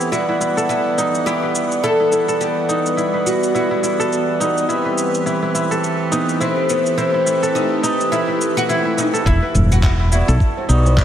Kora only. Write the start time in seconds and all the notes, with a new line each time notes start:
0.12 E4
0.29 E4
0.41 E4
0.57 A4
0.98 D#4
1.26 E4
1.43 B4
1.84 E4
2.00 E4
2.12 E4
2.28 A4
2.69 D#4
2.97 E4
3.14 B4
3.54 E4
3.71 E4
3.83 E4
4.00 A4
4.40 D#4
4.69 E4
4.85 B4
5.26 E4
5.43 E4
5.55 E4
5.71 A4
6.12 D#4
6.40 E4
6.57 B4
6.98 E4
7.14 E4
7.26 E4
7.43 A4
7.83 D#4
8.12 E4
8.28 B4
8.69 E4
8.85 E4
8.97 E4
9.13 A4
9.26 E4
9.42 B4
9.83 E4
10.00 E4
10.11 E4
10.28 A4
10.69 D#4
10.97 E4